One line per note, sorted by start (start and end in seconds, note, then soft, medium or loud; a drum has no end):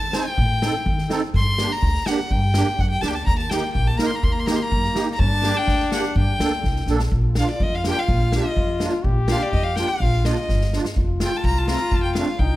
0.00 0.15 A5 loud
0.12 0.25 C4 medium
0.12 0.26 D#4 medium
0.12 0.26 C5 medium
0.12 1.10 G5 loud
0.12 snare medium
0.38 0.67 A2 medium
0.38 kick medium
0.62 0.74 C4 medium
0.62 0.74 D#4 medium
0.62 0.74 A4 medium
0.62 snare medium
0.86 1.00 D#3 medium
0.86 kick medium
0.98 snare soft
1.09 1.21 C4 medium
1.09 1.22 D#4 medium
1.09 1.22 A4 medium
1.09 snare medium
1.34 1.63 G2 medium
1.34 1.74 C6 loud
1.34 kick medium
1.58 1.71 A#3 medium
1.58 1.71 D4 medium
1.58 1.71 G4 medium
1.58 snare medium
1.72 2.09 A#5 loud
1.82 1.97 D2 medium
1.82 kick medium
1.94 snare soft
2.06 2.19 A#3 medium
2.06 2.19 D4 medium
2.06 2.20 G4 medium
2.06 2.33 F#5 medium
2.06 snare medium
2.30 2.60 G2 medium
2.30 2.81 G5 medium
2.30 kick medium
2.54 2.67 A#3 medium
2.54 2.68 D4 medium
2.54 2.68 G4 medium
2.54 snare medium
2.78 3.00 F#2 medium
2.78 2.89 F#5 medium
2.78 kick medium
2.90 3.03 G5 medium
3.01 3.25 D2 medium
3.01 3.14 A#3 medium
3.01 3.15 D4 medium
3.01 3.15 G4 medium
3.01 3.09 A5 medium
3.01 snare medium
3.08 3.16 G5 medium
3.15 3.26 A5 medium
3.26 3.56 D#2 medium
3.26 5.16 A#3 medium
3.26 3.38 A#5 medium
3.26 kick medium
3.38 3.51 A5 medium
3.49 3.63 A#3 medium
3.49 3.63 D#4 medium
3.49 3.63 G4 medium
3.49 3.72 G5 medium
3.49 snare medium
3.73 3.90 A#1 medium
3.73 3.88 G5 medium
3.73 kick medium
3.87 3.99 A5 medium
3.98 4.11 A#3 medium
3.98 4.11 D#4 medium
3.98 4.11 A#4 medium
3.98 4.08 A#5 medium
3.98 snare medium
4.06 4.16 C6 medium
4.15 4.25 A#5 medium
4.23 4.52 D#2 medium
4.23 4.34 C6 medium
4.23 kick medium
4.32 4.41 A#5 medium
4.39 4.48 C6 medium
4.46 4.60 A#3 medium
4.46 4.60 D#4 medium
4.46 4.60 G4 medium
4.46 4.57 A#5 medium
4.46 snare medium
4.56 4.64 C6 medium
4.63 4.96 A#5 medium
4.71 4.86 F#2 loud
4.71 kick medium
4.84 snare soft
4.94 5.07 A#3 medium
4.94 5.07 D#4 medium
4.94 5.08 G4 medium
4.94 snare medium
5.13 5.21 A#5 medium
5.19 5.48 G2 medium
5.19 6.84 D4 loud
5.19 5.58 A5 loud
5.19 kick medium
5.42 5.55 A#3 medium
5.42 5.56 D4 medium
5.42 5.56 G4 medium
5.42 snare medium
5.57 5.91 G5 loud
5.67 5.82 D2 medium
5.67 kick medium
5.67 snare soft
5.80 snare soft
5.91 6.04 A#3 medium
5.91 6.04 D4 medium
5.91 6.05 G4 medium
5.91 6.15 F#5 medium
5.91 snare medium
6.15 6.30 G2 medium
6.15 6.85 G5 medium
6.15 kick medium
6.39 6.61 D2 medium
6.39 6.52 A#3 medium
6.39 6.53 D4 medium
6.39 6.53 A4 medium
6.39 snare loud
6.63 6.86 C2 medium
6.63 kick medium
6.63 snare soft
6.76 snare soft
6.86 7.09 A#1 medium
6.86 7.01 A#3 medium
6.86 7.01 D4 medium
6.86 7.01 A4 medium
6.86 snare soft
6.99 snare medium
7.12 7.41 A#1 medium
7.12 9.06 F4 medium
7.12 kick medium
7.35 7.49 A#3 medium
7.35 7.49 D4 medium
7.35 7.50 F4 medium
7.35 7.49 F5 medium
7.35 snare medium
7.47 7.64 D5 medium
7.47 snare soft
7.60 7.89 F2 loud
7.60 7.76 D#5 medium
7.60 kick medium
7.75 7.86 F5 medium
7.84 7.97 A#3 medium
7.84 7.97 D4 medium
7.84 7.98 G4 medium
7.84 snare medium
7.88 8.01 G5 loud
7.99 8.35 F5 medium
8.08 8.37 A#1 medium
8.08 kick medium
8.32 8.45 A#3 medium
8.32 8.46 D4 medium
8.32 8.46 G4 medium
8.32 8.81 D#5 medium
8.32 snare medium
8.57 8.85 F2 medium
8.57 kick medium
8.80 8.93 A#3 medium
8.80 8.93 D4 medium
8.80 8.94 F4 medium
8.80 snare medium
9.04 9.33 A#1 medium
9.04 10.00 G4 loud
9.04 kick medium
9.28 9.40 A#3 medium
9.28 9.41 D4 medium
9.28 9.41 F4 medium
9.28 9.44 F5 medium
9.28 snare medium
9.42 9.52 D5 medium
9.53 9.82 F2 medium
9.53 9.65 D#5 medium
9.53 kick medium
9.64 9.77 F5 medium
9.75 9.88 A#3 medium
9.75 9.88 D4 medium
9.75 9.89 F4 medium
9.75 9.89 G5 medium
9.75 snare medium
9.88 10.27 F5 medium
10.00 10.29 A#1 medium
10.00 10.69 F4 medium
10.00 kick medium
10.24 10.36 A#3 medium
10.24 10.37 D4 medium
10.24 10.37 F4 medium
10.24 10.73 D#5 medium
10.24 snare medium
10.49 10.77 G1 medium
10.49 kick medium
10.49 snare soft
10.61 snare soft
10.73 10.84 A#3 medium
10.73 10.85 D4 medium
10.73 10.85 F4 medium
10.73 snare medium
10.85 snare medium
10.96 11.25 F1 medium
10.96 12.41 F4 loud
10.96 kick medium
11.20 11.32 A3 medium
11.20 11.32 C4 medium
11.20 11.32 F4 medium
11.20 snare medium
11.24 11.38 G5 medium
11.37 11.45 A5 medium
11.44 11.72 C2 medium
11.44 11.60 A#5 medium
11.44 kick medium
11.58 11.69 A5 medium
11.67 11.79 A3 medium
11.67 11.79 C4 medium
11.67 11.80 F4 medium
11.67 11.92 A#5 medium
11.67 snare medium
11.91 12.20 F1 medium
11.91 12.02 A5 medium
11.91 kick medium
12.03 12.14 G5 medium
12.15 12.27 A3 medium
12.15 12.28 C4 medium
12.15 12.28 D4 medium
12.15 12.40 F5 medium
12.15 snare medium
12.39 12.56 C2 medium
12.39 12.56 D#4 medium
12.39 12.56 G5 medium
12.39 kick medium